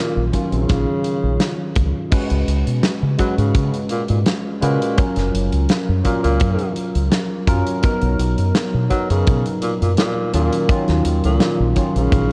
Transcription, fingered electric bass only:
0, 0, Header, 1, 3, 480
1, 0, Start_track
1, 0, Tempo, 714286
1, 1427, Time_signature, 4, 2, 24, 8
1, 8280, End_track
2, 0, Start_track
2, 0, Title_t, "Fingered electric bass"
2, 0, Program_c, 0, 33
2, 112, Note_on_c, 0, 34, 104
2, 200, Note_off_c, 0, 34, 0
2, 350, Note_on_c, 0, 34, 82
2, 438, Note_off_c, 0, 34, 0
2, 468, Note_on_c, 0, 34, 88
2, 566, Note_off_c, 0, 34, 0
2, 830, Note_on_c, 0, 34, 83
2, 918, Note_off_c, 0, 34, 0
2, 1184, Note_on_c, 0, 37, 96
2, 1284, Note_off_c, 0, 37, 0
2, 1553, Note_on_c, 0, 37, 89
2, 1640, Note_off_c, 0, 37, 0
2, 1664, Note_on_c, 0, 37, 89
2, 1764, Note_off_c, 0, 37, 0
2, 1793, Note_on_c, 0, 47, 86
2, 1880, Note_off_c, 0, 47, 0
2, 2033, Note_on_c, 0, 49, 101
2, 2120, Note_off_c, 0, 49, 0
2, 2271, Note_on_c, 0, 44, 88
2, 2359, Note_off_c, 0, 44, 0
2, 2383, Note_on_c, 0, 49, 91
2, 2484, Note_off_c, 0, 49, 0
2, 2753, Note_on_c, 0, 44, 85
2, 2840, Note_off_c, 0, 44, 0
2, 3107, Note_on_c, 0, 49, 82
2, 3206, Note_off_c, 0, 49, 0
2, 3473, Note_on_c, 0, 30, 92
2, 3560, Note_off_c, 0, 30, 0
2, 3587, Note_on_c, 0, 30, 88
2, 3686, Note_off_c, 0, 30, 0
2, 3715, Note_on_c, 0, 37, 93
2, 3801, Note_off_c, 0, 37, 0
2, 3956, Note_on_c, 0, 42, 102
2, 4041, Note_off_c, 0, 42, 0
2, 4195, Note_on_c, 0, 37, 88
2, 4281, Note_off_c, 0, 37, 0
2, 4306, Note_on_c, 0, 42, 95
2, 4405, Note_off_c, 0, 42, 0
2, 4672, Note_on_c, 0, 37, 83
2, 4760, Note_off_c, 0, 37, 0
2, 5022, Note_on_c, 0, 42, 83
2, 5123, Note_off_c, 0, 42, 0
2, 5391, Note_on_c, 0, 35, 94
2, 5479, Note_off_c, 0, 35, 0
2, 5505, Note_on_c, 0, 35, 92
2, 5605, Note_off_c, 0, 35, 0
2, 5633, Note_on_c, 0, 42, 88
2, 5720, Note_off_c, 0, 42, 0
2, 5875, Note_on_c, 0, 47, 101
2, 5961, Note_off_c, 0, 47, 0
2, 6116, Note_on_c, 0, 42, 93
2, 6201, Note_off_c, 0, 42, 0
2, 6231, Note_on_c, 0, 47, 95
2, 6328, Note_off_c, 0, 47, 0
2, 6598, Note_on_c, 0, 42, 81
2, 6682, Note_off_c, 0, 42, 0
2, 6948, Note_on_c, 0, 39, 81
2, 7046, Note_off_c, 0, 39, 0
2, 7317, Note_on_c, 0, 39, 95
2, 7402, Note_off_c, 0, 39, 0
2, 7428, Note_on_c, 0, 39, 93
2, 7526, Note_off_c, 0, 39, 0
2, 7555, Note_on_c, 0, 37, 90
2, 7641, Note_off_c, 0, 37, 0
2, 7795, Note_on_c, 0, 34, 104
2, 7881, Note_off_c, 0, 34, 0
2, 8035, Note_on_c, 0, 34, 92
2, 8121, Note_off_c, 0, 34, 0
2, 8145, Note_on_c, 0, 34, 97
2, 8245, Note_off_c, 0, 34, 0
2, 8280, End_track
3, 0, Start_track
3, 0, Title_t, "Muted fingered electric bass strokes"
3, 1425, Note_on_c, 9, 29, 44
3, 1492, Note_off_c, 9, 29, 0
3, 3348, Note_on_c, 9, 29, 42
3, 3415, Note_off_c, 9, 29, 0
3, 5266, Note_on_c, 9, 29, 43
3, 5334, Note_off_c, 9, 29, 0
3, 7184, Note_on_c, 9, 29, 42
3, 7251, Note_off_c, 9, 29, 0
3, 8280, End_track
0, 0, End_of_file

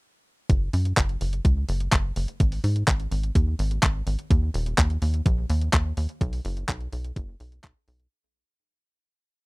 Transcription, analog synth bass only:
0, 0, Header, 1, 2, 480
1, 0, Start_track
1, 0, Key_signature, 6, "major"
1, 0, Tempo, 476190
1, 500, Time_signature, 4, 2, 24, 8
1, 9528, End_track
2, 0, Start_track
2, 0, Title_t, "Analog synth bass"
2, 0, Program_c, 0, 38
2, 500, Note_on_c, 0, 30, 100
2, 697, Note_off_c, 0, 30, 0
2, 741, Note_on_c, 0, 42, 99
2, 938, Note_off_c, 0, 42, 0
2, 980, Note_on_c, 0, 30, 99
2, 1178, Note_off_c, 0, 30, 0
2, 1220, Note_on_c, 0, 30, 77
2, 1418, Note_off_c, 0, 30, 0
2, 1459, Note_on_c, 0, 37, 96
2, 1657, Note_off_c, 0, 37, 0
2, 1700, Note_on_c, 0, 30, 100
2, 1898, Note_off_c, 0, 30, 0
2, 1940, Note_on_c, 0, 30, 94
2, 2137, Note_off_c, 0, 30, 0
2, 2180, Note_on_c, 0, 30, 83
2, 2279, Note_off_c, 0, 30, 0
2, 2420, Note_on_c, 0, 32, 100
2, 2618, Note_off_c, 0, 32, 0
2, 2660, Note_on_c, 0, 44, 100
2, 2857, Note_off_c, 0, 44, 0
2, 2900, Note_on_c, 0, 32, 96
2, 3098, Note_off_c, 0, 32, 0
2, 3140, Note_on_c, 0, 32, 83
2, 3337, Note_off_c, 0, 32, 0
2, 3380, Note_on_c, 0, 39, 94
2, 3578, Note_off_c, 0, 39, 0
2, 3620, Note_on_c, 0, 32, 100
2, 3818, Note_off_c, 0, 32, 0
2, 3860, Note_on_c, 0, 32, 94
2, 4058, Note_off_c, 0, 32, 0
2, 4099, Note_on_c, 0, 32, 82
2, 4198, Note_off_c, 0, 32, 0
2, 4340, Note_on_c, 0, 39, 104
2, 4538, Note_off_c, 0, 39, 0
2, 4579, Note_on_c, 0, 27, 100
2, 4777, Note_off_c, 0, 27, 0
2, 4820, Note_on_c, 0, 39, 104
2, 5018, Note_off_c, 0, 39, 0
2, 5060, Note_on_c, 0, 39, 83
2, 5257, Note_off_c, 0, 39, 0
2, 5300, Note_on_c, 0, 34, 98
2, 5498, Note_off_c, 0, 34, 0
2, 5541, Note_on_c, 0, 39, 99
2, 5738, Note_off_c, 0, 39, 0
2, 5779, Note_on_c, 0, 39, 93
2, 5977, Note_off_c, 0, 39, 0
2, 6020, Note_on_c, 0, 39, 80
2, 6119, Note_off_c, 0, 39, 0
2, 6259, Note_on_c, 0, 35, 105
2, 6457, Note_off_c, 0, 35, 0
2, 6500, Note_on_c, 0, 30, 101
2, 6698, Note_off_c, 0, 30, 0
2, 6739, Note_on_c, 0, 35, 97
2, 6937, Note_off_c, 0, 35, 0
2, 6981, Note_on_c, 0, 35, 80
2, 7178, Note_off_c, 0, 35, 0
2, 7219, Note_on_c, 0, 30, 102
2, 7417, Note_off_c, 0, 30, 0
2, 7461, Note_on_c, 0, 35, 79
2, 7658, Note_off_c, 0, 35, 0
2, 7700, Note_on_c, 0, 35, 83
2, 7799, Note_off_c, 0, 35, 0
2, 7941, Note_on_c, 0, 35, 101
2, 8138, Note_off_c, 0, 35, 0
2, 9528, End_track
0, 0, End_of_file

